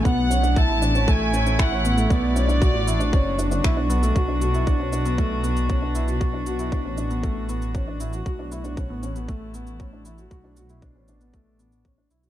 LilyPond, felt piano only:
\new Staff \with { instrumentName = "Felt piano" } { \time 4/4 \key fis \phrygian \tempo 4 = 117 b8 cis'16 d'16 e'16 e'16 d'16 cis'16 a8 cis'16 cis'16 e'16 cis'16 b16 a16 | b8 cis'16 d'16 fis'16 fis'16 e'16 d'16 cis'8 d'16 d'16 e'16 d'16 b16 a16 | fis'16 d'16 fis'16 e'16 d'16 cis'16 d'16 b16 a8 b8 cis'16 d'16 e'16 fis'16 | fis'16 d'16 fis'16 e'16 d'16 cis'16 d'16 b16 a8 b8 cis'16 d'16 e'16 fis'16 |
fis'16 d'16 e'16 d'16 cis'16 b16 cis'16 b16 a8 b8 cis'16 d'16 e'16 fis'16 | fis'16 d'16 fis'16 e'16 d'16 cis'16 d'16 b16 a8 b8 cis'16 d'16 e'16 fis'16 | }